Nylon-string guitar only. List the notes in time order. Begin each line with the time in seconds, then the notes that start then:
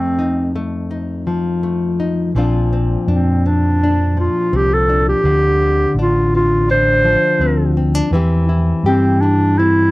Already playing: F2 A3 C4
0.19 D#4
0.56 A3
0.91 D#4
1.27 F3
1.63 A3
2.00 D#4
2.36 A#2 F3 C4 D4 F4
2.73 C4
3.08 D4
3.46 C4
3.84 D4
4.17 F3
4.53 C4
4.89 D4
5.25 D3
5.62 C4
5.99 D4
6.35 C4
6.70 D4
7.04 F3
7.41 C4
7.77 C4
7.95 D4
8.13 E3 C4 E4 G4
8.49 E4
8.86 G4
9.23 E4
9.59 C4